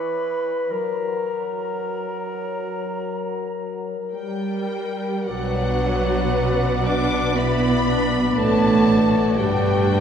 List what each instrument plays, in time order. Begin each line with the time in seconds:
Already playing: french horn section E3, clarinet B4, flute B5
0.71 french horn section F#3, clarinet A#4, flute A#5
4.14 french horn section G3, viola section G3, flute A#4, violin section G5
5.28 double bass section B1, cello section B2, french horn section F#3, viola section F#3, violin section D4 B4 F#5, clarinet B4, flute B4, oboe D5
6.33 violin section C#4
6.85 violin section B3 D6, viola section D4, french horn section D4, flute F#5
7.36 french horn section B3, viola section B3, violin section E4 B5, clarinet B4, oboe D5, flute D5
7.88 violin section D4
8.37 double bass section A1, cello section A2, french horn section A3, viola section A3, violin section F#4 A5, flute C#5
9.38 double bass section G1, cello section G2, french horn section G3, viola section G3, violin section D4 G5, flute B4, clarinet B4, oboe D5